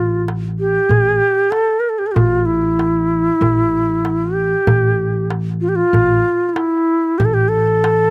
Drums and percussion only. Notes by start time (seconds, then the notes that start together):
0.28 darbuka tek
0.91 darbuka dum
1.38 darbuka ka
1.52 darbuka tek
2.01 darbuka ka
2.16 darbuka dum
2.32 darbuka ka
2.79 darbuka tek
3.42 darbuka dum
3.89 darbuka ka
4.05 darbuka tek
4.51 darbuka ka
4.67 darbuka dum
4.84 darbuka ka
5.30 darbuka tek
5.94 darbuka dum
6.41 darbuka ka
6.56 darbuka tek
7.20 darbuka dum
7.84 darbuka tek